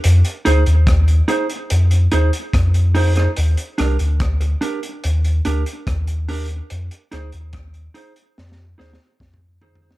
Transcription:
<<
  \new Staff \with { instrumentName = "Clean electric guitar" } { \time 4/4 \key f \dorian \tempo 4 = 72 r8 <ees' aes' c''>16 r8. <ees' aes' c''>16 r8. <ees' aes' c''>16 r8. <ees' aes' c''>16 <ees' aes' c''>16 | r8 <d' g' bes'>16 r8. <d' g' bes'>16 r8. <d' g' bes'>16 r8. <d' g' bes'>16 r16 | r8 <ees' aes' c''>16 r8. <ees' aes' c''>16 r8. <ees' aes' c''>16 r8. <ees' aes' c''>16 <ees' aes' c''>16 | }
  \new Staff \with { instrumentName = "Sub bass" } { \clef bass \time 4/4 \key f \dorian f,16 r16 d,16 ees,8. r8 f,8 ees,16 r16 f,4 | ees,16 r16 c,16 d,8. r8 ees,8 d,16 r16 ees,4 | f,16 r16 d,16 ees,8. r8 f,8 ees,16 r16 f,4 | }
  \new DrumStaff \with { instrumentName = "Drums" } \drummode { \time 4/4 hh16 hh16 hh16 hh16 <hh bd ss>16 hh16 hh16 hh16 hh16 hh16 hh16 hh16 <hh bd ss>16 hh16 hho16 <hh ss>16 | hh16 hh16 <hh ss>16 hh16 <hh bd ss>16 hh16 hh16 hh16 hh16 hh16 hh16 hh16 <hh bd ss>16 hh16 hho16 hh16 | hh16 hh16 <hh ss>16 hh16 <hh bd ss>16 hh16 hh16 hh16 \tuplet 3/2 { sn16 sn16 r16 sn16 sn16 r16 <bd sn>16 toml16 r16 tomfh16 tomfh16 sn16 } | }
>>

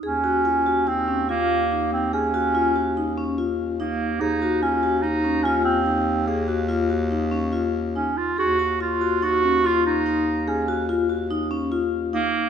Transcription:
<<
  \new Staff \with { instrumentName = "Vibraphone" } { \time 5/4 \key aes \mixolydian \tempo 4 = 144 aes'8 ges'8 f'8 ges'8 ees'8 des'8 f'4 ees'4 | aes'8 ges'8 f'8 ges'8 ees'8 des'8 f'4 ees'4 | aes'8 ges'8 f'8 ges'8 ees'8 des'8 f'4 ees'4 | aes'8 ges'8 f'8 ges'8 ees'8 des'8 f'4 ees'4 |
aes'8 ges'8 f'8 ges'8 ees'8 des'8 f'4 ees'4 | aes'8 ges'8 f'8 ges'8 ees'8 des'8 f'4 ees'4 | }
  \new Staff \with { instrumentName = "Clarinet" } { \time 5/4 \key aes \mixolydian des'2 c'4 bes4. c'8 | des'2. r4 bes4 | ees'4 des'4 ees'4 des'8 c'4. | bes4 r2. des'8 f'8 |
ges'4 f'4 ges'4 f'8 ees'4. | des'4 r2. bes4 | }
  \new Staff \with { instrumentName = "Bass clarinet" } { \clef bass \time 5/4 \key aes \mixolydian ees,1~ ees,4~ | ees,1~ ees,4 | ees,1~ ees,4~ | ees,1~ ees,4 |
ees,1~ ees,4~ | ees,1~ ees,4 | }
>>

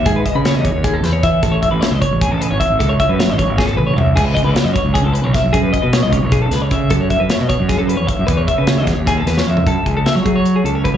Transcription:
<<
  \new Staff \with { instrumentName = "Clean electric guitar" } { \time 7/8 \key fis \dorian \tempo 4 = 153 gis'16 b'16 dis''16 b'16 cis''16 dis''16 cis''8 gis'16 a'16 b'16 cis''16 e''8 | a'16 cis''16 e''16 b'16 cis''16 dis''16 cis''8 gis'16 a'16 b'16 cis''16 e''8 | a'16 cis''16 e''16 b'16 cis''16 dis''16 cis''8 gis'16 a'16 b'16 cis''16 e''8 | gis'16 b'16 dis''16 b'16 cis''16 dis''16 cis''8 gis'16 a'16 b'16 cis''16 e''8 |
gis'16 b'16 dis''16 b'16 cis''16 dis''16 cis''8 gis'16 a'16 b'16 cis''16 e''8 | a'16 cis''16 e''16 b'16 cis''16 dis''16 cis''8 gis'16 a'16 b'16 cis''16 e''8 | b'16 cis''16 e''16 b'16 cis''16 dis''16 cis''8 gis'16 a'16 b'16 cis''16 e''8 | a'8 gis'16 a'16 e''16 cis''16 gis'16 cis''8 gis'16 a'16 cis''16 b'16 r16 | }
  \new Staff \with { instrumentName = "Fingered electric bass" } { \clef bass \time 7/8 \key fis \dorian gis,8 r16 cis8 e,8 dis,8. e,8 e8 | a,,8. a,,16 r16 cis,16 r16 a,,8 a,,8 gis,,16 r16 gis,,16 | cis,8 r16 fis,8 a,,8 gis,,8. a,,8 c,8 | cis,8. cis,16 r16 fis,16 r16 cis,8 cis,8 b,,16 r16 b,,16 |
fis,8 r16 b,8 cis,8 b,,8. cis,8 cis8 | fis,8. fis,16 r16 b,16 r16 fis,8 fis,8 e,16 r16 fis,16 | e,8 r16 cis8 e,8 dis,8. e,8 f,8 | fis,16 r16 cis,8 r16 fis16 fis4 cis,8. fis16 | }
  \new DrumStaff \with { instrumentName = "Drums" } \drummode { \time 7/8 <hh bd>8 <hh bd>8 <hh sn>8 <hh bd>8 <hh bd>8 <hh sn>8 <hh bd>8 | <hh bd>8 <hh bd>8 <hh sn>8 <hh bd>8 <hh bd>8 hh8 <hh bd>8 | <hh bd>8 <hh bd>8 <hh sn>8 <hh bd>8 <bd sn>8 toml8 tomfh8 | <cymc hh bd>8 <hh bd>8 <hh sn>8 <hh bd>8 <hh bd>8 hh8 <hh bd sn>8 |
<hh bd>8 <hh bd>8 <hh sn>8 <hh bd>8 <hh bd>8 <hh sn>8 <hh bd>8 | <hh bd>8 <hh bd>8 <hh sn>8 <hh bd>8 <hh bd sn>8 hh8 <hh bd>8 | <hh bd>8 <hh bd>8 <hh sn>8 <hh bd sn>8 <hh bd sn>8 <hh sn>16 sn8 tomfh16 | <hh bd>8 <hh bd>8 <hh sn>8 <hh bd>8 hh8 hh8 <hh bd>8 | }
>>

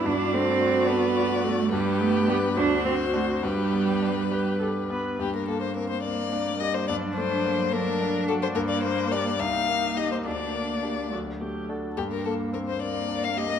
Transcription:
<<
  \new Staff \with { instrumentName = "Violin" } { \time 6/8 \key g \major \tempo 4. = 71 d''2. | b'4. c''4. | b'2~ b'8 r8 | \key g \minor g'16 bes'16 a'16 c''16 bes'16 c''16 d''4 ees''16 c''16 |
d''8 c''4 bes'4 a'16 c''16 | bes'16 d''16 c''8 d''8 f''4 ees''16 c''16 | d''4. r4. | g'16 bes'16 a'8 bes'16 c''16 d''8. f''16 ees''8 | }
  \new Staff \with { instrumentName = "Viola" } { \time 6/8 \key g \major fis'2. | g'4. fis'4. | g'4. g'8 a'8 b'8 | \key g \minor r4. bes4. |
d'4. d'4. | bes4. ees'4. | d'4. fis'8 g'8 a'8 | r4. bes4. | }
  \new Staff \with { instrumentName = "Grand piano" } { \time 6/8 \key g \major g,8 a8 d'8 a'8 fis'8 a8 | g,8 b8 <d' g'>8 d,8 c'8 <d' fis'>8 | g,8 b8 d'8 b'8 g'8 b8 | \key g \minor g,8 bes8 c'8 bes8 d'8 g'8 |
g,8 a8 bes8 a8 d'8 fis'8 | g,8 bes8 <d' g'>8 c,8 bes8 <ees' g'>8 | d,8 bes8 <d' g'>8 d,8 a8 <d' fis'>8 | g,8 bes8 c'8 bes8 d'8 g'8 | }
  \new Staff \with { instrumentName = "Cello" } { \time 6/8 \key g \major d'8 c'4 b4 a8 | g8 a8 b8 d'8 c'8 a8 | g2~ g8 r8 | \key g \minor bes4. bes8. g8. |
fis2. | bes4. bes4. | bes4. fis4~ fis16 r16 | bes4. bes4. | }
>>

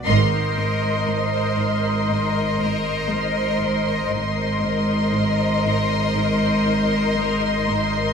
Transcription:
<<
  \new Staff \with { instrumentName = "Violin section" } { \time 4/4 \key aes \dorian \tempo 4 = 59 c'''1 | c'''1 | }
  \new Staff \with { instrumentName = "Violin section" } { \time 4/4 \key aes \dorian <bes' ees''>1 | <bes' ees''>1 | }
  \new Staff \with { instrumentName = "Synth texture" } { \time 4/4 \key aes \dorian <bes' c'' ees''>1 | <bes' c'' ees''>1 | }
  \new Staff \with { instrumentName = "Cello section" } { \clef bass \time 4/4 \key aes \dorian aes,1 | aes,1 | }
  \new Staff \with { instrumentName = "Cello section" } { \clef bass \time 4/4 \key aes \dorian aes,8 aes,8 aes,8 aes,8 aes,8 aes,8 aes8 aes,8 | aes,8 aes,8 aes,8 aes,8 aes,8 aes,8 aes8 aes,8 | }
  \new Staff \with { instrumentName = "Double bass section" } { \clef bass \time 4/4 \key aes \dorian aes,,1 | aes,,1 | }
>>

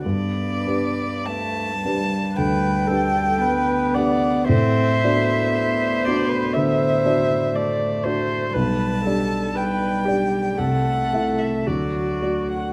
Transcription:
<<
  \new Staff \with { instrumentName = "Violin" } { \time 4/4 \key g \major \tempo 4 = 57 d''4 a''4 g''4. fis''8 | e''4. d''16 b'16 c''4. r8 | a''4 g''4 fis''8. e''16 d''8. fis''16 | }
  \new Staff \with { instrumentName = "Viola" } { \time 4/4 \key g \major r2 b'8 a'8 b'8 d''8 | c''4 c''4 e''4 d''8 c''8 | b'8 a'8 b'8 g'8 a'4 fis'4 | }
  \new Staff \with { instrumentName = "Grand piano" } { \time 4/4 \key g \major g,8 <d' g' b'>4 <d' g' b'>8 d,8 <d' g' b'>4 <d' g' b'>8 | a,8 <d' fis' d''>4 <d' fis' d''>8 d8 <d' fis' d''>4 <d' fis' d''>8 | b,,8 <d' g' d''>4 <d' g' d''>8 c,8 <a e' e''>8 d,8 <a fis' d''>8 | }
  \new Staff \with { instrumentName = "Cello" } { \time 4/4 \key g \major b4 a8 g4. b4 | c'8 b2~ b8 a4 | g4 g4 a4 fis4 | }
>>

